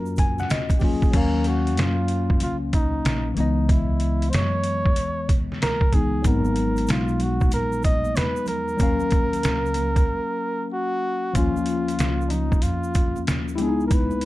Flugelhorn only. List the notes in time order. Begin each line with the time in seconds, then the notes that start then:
Already playing: A#4
0.79 G4
0.85 G#4
1.16 A#4
1.48 F#4
1.80 F4
2.43 F4
2.74 D#4
3.39 D#4
3.71 E4
4.30 C5
4.35 C#5
5.63 A#4
5.94 G#4
6.27 A#4
6.91 F4
7.23 F#4
7.54 A#4
7.85 D#5
8.17 B4
8.48 A#4
10.73 F#4
11.35 F4
12.28 D4 D#4
12.62 F4
13.56 G4
13.62 G#4
13.87 A#4
13.94 B4